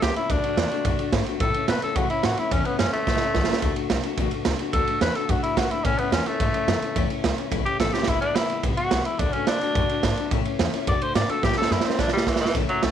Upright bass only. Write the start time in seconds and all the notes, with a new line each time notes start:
0.02 C#2
0.30 D2
0.56 E2
0.85 F#2
1.12 G#2
1.40 A2
1.54 muted upright bass stroke
1.68 B2
1.82 muted upright bass stroke
1.96 C#3
2.10 muted upright bass stroke
2.24 A2
2.51 E2
2.79 F#2
2.94 muted upright bass stroke
3.35 C#2
3.49 muted upright bass stroke
3.62 D2
3.90 B1
4.03 muted upright bass stroke
4.17 A1
4.32 muted upright bass stroke
4.46 C#2
4.73 D2
5.01 E2
5.29 F#2
5.42 muted upright bass stroke
5.57 G#2
5.70 muted upright bass stroke
5.85 A2
5.98 muted upright bass stroke
6.12 E2
6.40 G#2
6.53 muted upright bass stroke
6.67 F#2
6.81 muted upright bass stroke
6.96 E2
7.24 C#2
7.38 muted upright bass stroke
7.51 B1
7.66 muted upright bass stroke
7.80 A1
8.07 E1
8.21 muted upright bass stroke
8.36 F#1
8.50 muted upright bass stroke
8.63 G#1
8.91 B1
9.06 muted upright bass stroke
9.19 D2
9.34 muted upright bass stroke
9.48 E2
9.62 muted upright bass stroke
9.75 F#2
9.90 muted upright bass stroke
10.03 G#2
10.31 A2
10.45 muted upright bass stroke
10.59 E2
10.73 muted upright bass stroke
10.87 F#2
11.01 muted upright bass stroke
11.15 G#2
11.29 muted upright bass stroke
11.43 A2
11.57 muted upright bass stroke
11.71 F#2
11.85 muted upright bass stroke
11.99 E2
12.13 muted upright bass stroke
12.27 D2
12.55 A1
12.69 muted upright bass stroke
12.82 B1